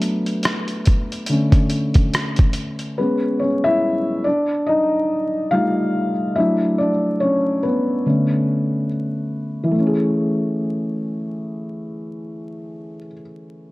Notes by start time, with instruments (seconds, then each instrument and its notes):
Already playing: felt piano F#3 A3 B3 D4 B4
0.02 closed hi-hat
0.26 closed hi-hat
0.43 cross-stick, closed hi-hat
0.68 closed hi-hat
0.85 kick, closed hi-hat
1.12 closed hi-hat
1.26 felt piano D3 A3, closed hi-hat
1.30 felt piano C#4
1.52 kick, closed hi-hat
1.70 closed hi-hat
1.94 kick, closed hi-hat
2.14 cross-stick, closed hi-hat
2.36 kick, closed hi-hat
2.53 closed hi-hat
2.79 closed hi-hat
2.98 felt piano G#3 B3 C#4 B4
3.39 felt piano C#4 C#5
3.64 felt piano E4 E5
4.24 felt piano D4 D5
4.66 felt piano D#4 D#5
5.51 felt piano G3 A3 D#4 F4 F5
6.36 felt piano F#3 A3 D4 E4 E5
6.78 felt piano D4 D5
7.20 felt piano C#4 C#5
7.63 felt piano B3 B4
8.06 felt piano D3 A3 C#4
9.63 felt piano E3
9.71 felt piano A3
9.79 felt piano C#4
9.86 felt piano G#4